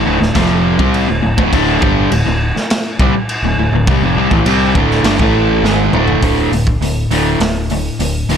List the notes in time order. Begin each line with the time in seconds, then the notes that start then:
0.06 D1 D2 A2
0.20 D1 D2 A2, snare
0.35 F1 F2 C3 F3, kick, snare, crash
0.79 C2 C3 G3 C4, kick
0.94 crash
1.08 D1 D2 A2
1.22 D1 D2 A2
1.38 D1 D2 A2, kick
1.53 D1 D2 A2 D3, kick, crash
1.82 G1 G2 D3 G3, kick
2.12 D1 D2 A2, crash
2.26 D1 D2 A2
2.56 muted overdriven electric guitar stroke, muted fingered electric bass stroke, snare
2.70 snare, crash
2.99 C2 C3 G3, kick
3.14 muted fingered electric bass stroke, muted overdriven electric guitar stroke
3.29 crash
3.42 D1 D2 A2
3.57 D1 D2 A2
3.72 D1 D2 A2
3.87 C2 C3 G3, kick, crash
4.01 F1 F2 C3
4.16 C2 C3 G3
4.31 A1 A2 E3, kick
4.45 C2 C3 G3 C4, crash
4.75 D1 D2 A2 D3, kick
4.91 snare
5.04 G1 G2 D3, snare, crash
5.19 A1 A2 E3 A3, kick
5.63 G#1 G#2 D#3 G#3, snare
5.93 D1 D2 A2 D3, mid tom
6.08 floor tom
6.22 D1 D2 A2 D3, kick, open hi-hat
6.52 D1 D2 A2, open hi-hat
6.67 kick
6.81 D1 D2 A2, open hi-hat
7.11 D1 D2 A2 D3, open hi-hat
7.40 D1 D2 A2, snare, open hi-hat
7.70 D2 A2, open hi-hat
7.99 D1 D2 A2, open hi-hat
8.29 D1 D2 A2 D3, open hi-hat